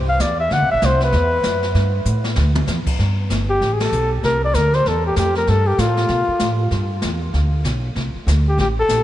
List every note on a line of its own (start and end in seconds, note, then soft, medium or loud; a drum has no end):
0.00 0.19 C2 medium
0.09 0.23 F5 loud
0.20 0.49 E2 loud
0.20 0.39 D5 medium
0.20 snare medium
0.20 hi-hat pedal medium
0.39 0.54 E5 loud
0.50 0.61 D2 medium
0.50 0.71 F#5 loud
0.50 brush sweep medium
0.50 snare soft
0.61 0.71 C2 medium
0.72 0.82 A1 medium
0.72 0.87 E5 loud
0.82 1.12 C2 loud
0.82 1.03 C5 loud
0.82 snare medium
0.82 hi-hat pedal medium
1.00 1.72 B4 loud
1.00 snare soft
1.12 1.43 E2 medium
1.12 brush sweep medium
1.12 snare soft
1.43 1.74 F#2 medium
1.43 snare medium
1.43 hi-hat pedal medium
1.62 snare soft
1.74 2.05 G2 medium
1.74 brush sweep soft
1.74 snare medium
2.05 2.36 A2 loud
2.05 hi-hat pedal medium
2.24 snare medium
2.36 2.67 D2 medium
2.36 snare medium
2.55 mid tom medium
2.67 2.85 E2 loud
2.67 snare medium
2.67 hi-hat pedal medium
2.87 muted upright bass stroke soft
2.87 kick medium
2.87 crash medium
2.99 3.29 G2 medium
2.99 brush sweep soft
2.99 snare soft
3.30 3.60 G1 medium
3.30 snare medium
3.30 hi-hat pedal medium
3.49 3.75 G4 medium
3.61 3.91 A1 medium
3.61 brush sweep soft
3.61 snare soft
3.73 3.83 G#4 medium
3.80 4.12 A4 loud
3.80 snare medium
3.80 ride medium
3.92 4.22 B1 loud
3.92 hi-hat pedal medium
4.23 4.53 C2 medium
4.23 4.42 A#4 loud
4.23 brush sweep soft
4.23 snare soft
4.45 4.56 D5 loud
4.54 4.84 D2 medium
4.54 4.76 A#4 loud
4.54 snare medium
4.54 hi-hat pedal medium
4.73 4.89 C5 loud
4.73 snare soft
4.85 5.15 E2 medium
4.85 5.06 A4 medium
4.85 brush sweep soft
4.85 snare soft
5.06 5.16 G4 medium
5.16 5.46 F2 medium
5.16 5.35 G4 loud
5.16 snare medium
5.16 hi-hat pedal medium
5.35 5.51 A#4 medium
5.35 snare soft
5.47 5.77 G2 medium
5.47 5.68 A4 loud
5.47 brush sweep medium
5.47 snare soft
5.67 5.81 G4 medium
5.78 6.08 A2 loud
5.78 6.72 F4 medium
5.78 snare medium
5.78 hi-hat pedal medium
5.97 snare soft
6.08 6.27 B2 medium
6.08 brush sweep soft
6.08 snare soft
6.28 muted upright bass stroke soft
6.39 6.70 A2 medium
6.39 snare medium
6.39 hi-hat pedal medium
6.71 7.02 G2 medium
6.71 brush sweep soft
6.71 snare soft
7.02 7.33 E2 loud
7.02 snare medium
7.02 hi-hat pedal medium
7.33 7.63 D2 medium
7.33 brush sweep soft
7.33 snare soft
7.64 7.95 B1 medium
7.64 snare medium
7.64 hi-hat pedal medium
7.95 8.13 C2 medium
7.95 brush sweep medium
7.95 snare soft
8.15 muted upright bass stroke soft
8.27 8.57 D2 loud
8.27 snare medium
8.27 hi-hat pedal medium
8.49 8.59 G4 medium
8.57 8.88 A1 medium
8.57 8.68 G4 medium
8.57 brush sweep soft
8.57 snare medium
8.79 9.03 A4 loud
8.89 9.03 A#1 medium
8.89 snare medium
8.89 hi-hat pedal medium